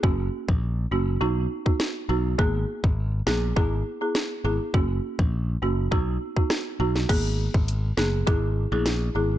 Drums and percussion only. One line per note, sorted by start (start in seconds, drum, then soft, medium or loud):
0.04 kick loud
0.49 kick medium
1.66 kick medium
1.80 snare loud
2.39 kick loud
2.84 kick medium
3.27 snare loud
3.57 kick loud
4.15 snare loud
4.74 kick loud
5.19 kick medium
5.92 kick medium
6.37 kick medium
6.50 cross-stick loud
6.50 snare loud
6.96 snare medium
7.09 kick loud
7.09 closed hi-hat medium
7.09 crash medium
7.54 kick medium
7.68 closed hi-hat medium
7.97 snare loud
8.27 kick loud
8.27 closed hi-hat medium
8.86 snare loud
8.86 closed hi-hat medium